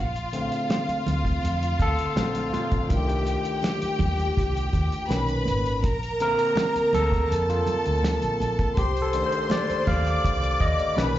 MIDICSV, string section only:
0, 0, Header, 1, 2, 480
1, 0, Start_track
1, 0, Tempo, 734125
1, 1897, Time_signature, 4, 2, 24, 8
1, 7316, End_track
2, 0, Start_track
2, 0, Title_t, "String section"
2, 0, Program_c, 0, 48
2, 0, Note_on_c, 0, 65, 74
2, 0, Note_on_c, 0, 77, 80
2, 1873, Note_off_c, 0, 65, 0
2, 1874, Note_off_c, 0, 77, 0
2, 1898, Note_on_c, 0, 79, 80
2, 1899, Note_on_c, 0, 67, 75
2, 3312, Note_off_c, 0, 67, 0
2, 3312, Note_off_c, 0, 79, 0
2, 3333, Note_on_c, 0, 71, 72
2, 3333, Note_on_c, 0, 83, 82
2, 3805, Note_off_c, 0, 71, 0
2, 3806, Note_off_c, 0, 83, 0
2, 3811, Note_on_c, 0, 70, 76
2, 3812, Note_on_c, 0, 82, 88
2, 4755, Note_off_c, 0, 70, 0
2, 4755, Note_off_c, 0, 82, 0
2, 4775, Note_on_c, 0, 81, 80
2, 4776, Note_on_c, 0, 69, 73
2, 5717, Note_off_c, 0, 69, 0
2, 5717, Note_off_c, 0, 81, 0
2, 5739, Note_on_c, 0, 72, 73
2, 5739, Note_on_c, 0, 84, 78
2, 6443, Note_off_c, 0, 72, 0
2, 6444, Note_off_c, 0, 84, 0
2, 6454, Note_on_c, 0, 74, 74
2, 6457, Note_on_c, 0, 86, 82
2, 7161, Note_off_c, 0, 74, 0
2, 7162, Note_off_c, 0, 86, 0
2, 7176, Note_on_c, 0, 83, 79
2, 7177, Note_on_c, 0, 71, 74
2, 7316, Note_off_c, 0, 71, 0
2, 7316, Note_off_c, 0, 83, 0
2, 7316, End_track
0, 0, End_of_file